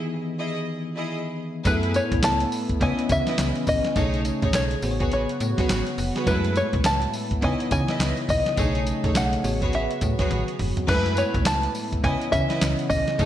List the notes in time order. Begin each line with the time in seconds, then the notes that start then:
Already playing: E3 B3 D#4 G#4 G#5
0.39 E4 G#4 D#5
0.96 E4 G#4 D#5
1.65 F#2 A2 A3 B3 E4 G#4 A4 B4, kick, closed hi-hat, tambourine
1.83 closed hi-hat
1.94 C#5, closed hi-hat, tambourine
2.12 B1, kick, closed hi-hat
2.23 C#2 A5, snare, clap, closed hi-hat, tambourine
2.40 closed hi-hat
2.52 open hi-hat, tambourine
2.69 kick, closed hi-hat
2.80 C#2 C#3 E3 B3 C#4 E4 B4 C#5 D#5 G#5, kick, closed hi-hat
2.99 closed hi-hat
3.09 C#3 E5, kick, closed hi-hat, tambourine
3.27 E4 B4 D#5, snare, closed hi-hat
3.38 C#2, snare, clap, closed hi-hat, tambourine
3.56 closed hi-hat
3.67 A#1 D#5, kick, open hi-hat, tambourine
3.84 snare, closed hi-hat
3.96 B1 A3 D#4 G#4 A4 C#5, kick, closed hi-hat, tambourine
4.14 closed hi-hat
4.25 closed hi-hat, tambourine
4.42 A1 D#4 G#4 A4 C#5, kick, closed hi-hat
4.53 B1 C#5, snare, clap, closed hi-hat, tambourine
4.71 closed hi-hat
4.82 A1 C#3 F#3 B3 F#4 G#4 C5, open hi-hat, tambourine
4.91 C#5
5.00 F#4 G#4 B4 C#5, kick, closed hi-hat
5.12 C#5, closed hi-hat
5.29 closed hi-hat
5.40 A2, closed hi-hat, tambourine
5.58 F#4 G#4 B4 C#5, kick, snare, closed hi-hat
5.69 A1, snare, clap, closed hi-hat, tambourine
5.87 closed hi-hat
5.98 F1, open hi-hat, tambourine
6.15 F#4 G#4 B4 C#5, snare, closed hi-hat
6.26 F#2 A2 G#3 A3 E4 G#4 A4 B4, kick, closed hi-hat, tambourine
6.45 closed hi-hat
6.55 C#5, closed hi-hat, tambourine
6.73 B1, kick, closed hi-hat
6.84 C#2 A5, snare, clap, closed hi-hat, tambourine
7.02 closed hi-hat
7.13 open hi-hat, tambourine
7.31 kick, closed hi-hat
7.41 C#2 C#3 E3 B3 D#4 E4 B4 C#5 D#5 G#5, kick, closed hi-hat
7.60 closed hi-hat
7.71 C#3 G#5, kick, closed hi-hat, tambourine
7.88 E4 B4 D#5, snare, closed hi-hat
8.00 C#2, snare, clap, closed hi-hat, tambourine
8.17 closed hi-hat
8.29 A#1 D#5, kick, open hi-hat, tambourine
8.46 snare, closed hi-hat
8.57 B1 F#3 A3 D4 D#4 G#4 A4 C#5, kick, closed hi-hat, tambourine
8.65 D#4
8.75 closed hi-hat
8.86 closed hi-hat, tambourine
9.04 A1 D#4 G#4 A4 C#5, kick, closed hi-hat
9.15 B1 F#5, snare, clap, closed hi-hat, tambourine
9.33 closed hi-hat
9.43 A1 B3 F#4 G#4 C#5, open hi-hat, tambourine
9.61 F#4 G#4 B4 C#5, kick, closed hi-hat
9.73 E5, closed hi-hat
9.91 closed hi-hat
10.01 A2, kick, closed hi-hat, tambourine
10.19 F#4 G#4 B4 C#5, kick, snare, closed hi-hat
10.31 A1, closed hi-hat, high tom
10.48 closed hi-hat
10.59 F1, mid tom, open hi-hat
10.77 closed hi-hat, floor tom
10.87 F#2 A2 G#3 A3 B3 E4 G#4 A4 B4, kick, crash, tambourine
10.96 B4
11.06 closed hi-hat
11.17 C#5, closed hi-hat, tambourine
11.34 B1, kick, closed hi-hat
11.45 C#2 A5, snare, clap, closed hi-hat, tambourine
11.63 closed hi-hat
11.75 open hi-hat, tambourine
11.92 kick, closed hi-hat
12.03 C#2 C#3 E3 B3 C#4 E4 B4 C#5 D#5 G#5, kick, closed hi-hat
12.22 closed hi-hat
12.32 C#3 E5, kick, closed hi-hat, tambourine
12.49 E4 B4 D#5, snare, closed hi-hat
12.61 C#2, snare, clap, closed hi-hat, tambourine
12.79 closed hi-hat
12.90 A#1 D#5, kick, open hi-hat, tambourine
13.08 snare, closed hi-hat
13.19 B1 F#3 A3 D#4 G#4 A4 C#5, kick, closed hi-hat, tambourine